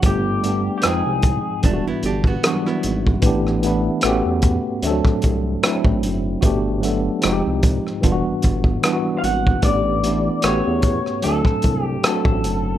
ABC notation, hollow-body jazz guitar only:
X:1
M:4/4
L:1/16
Q:"Swing 16ths" 1/4=75
K:Em
V:1 name="Hollow-body jazz guitar"
z8 [A,D] [B,E] [DG] [B,F]2 [B,E]3 | z16 | z16 | z16 |]